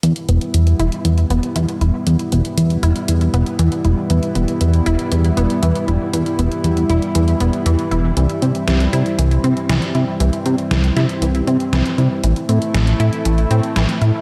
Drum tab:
HH |xxxxxxxxxxxxxxx-|xxxxxxxxxxxxxxx-|xxxxxxxxxxxxxxx-|xxxxxxxxxxxxxxx-|
SD |----------------|----------------|----------------|----------------|

HH |xxxxxxxxxxxxxxx-|xxxxxxxxxxxxxxx-|xxxxxxxxxxxxxxx-|
SD |----o-------o---|----o-o-----o---|----o-------o---|